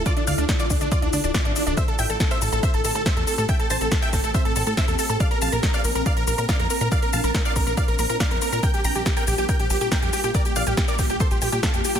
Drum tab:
HH |xxoxxxoxxxoxxxox|xxoxxxoxxxo-xxox|xxoxxxoxxxoxxxox|xxoxxxoxxxoxxxox|
SH |x-xxxxxxx-xxx-xx|x-xxxxxxx-xxx-xx|x-xxxxxxx-xxxxxx|x-xxxxxxx-xxx-xx|
SD |----o-------o---|----o-------o---|----o-o-----o---|----o-------o---|
BD |o---o-o-o---o---|o---o---o---o---|o---o-o-o---o---|o---o---o---o---|

HH |xxoxxxoxxxoxxxox|xxoxxxoxxxoxxxox|xxoxxxoxxxoxxxox|
SH |x-xxxxxxx-xxx-xx|x-xxxxxxx-xxx-xx|xxxxxxxxxxxxxxxx|
SD |----o-------o---|----o-------o---|----o-o-----o---|
BD |o---o-o-o---o---|o---o---o---o---|o---o-o-o---o---|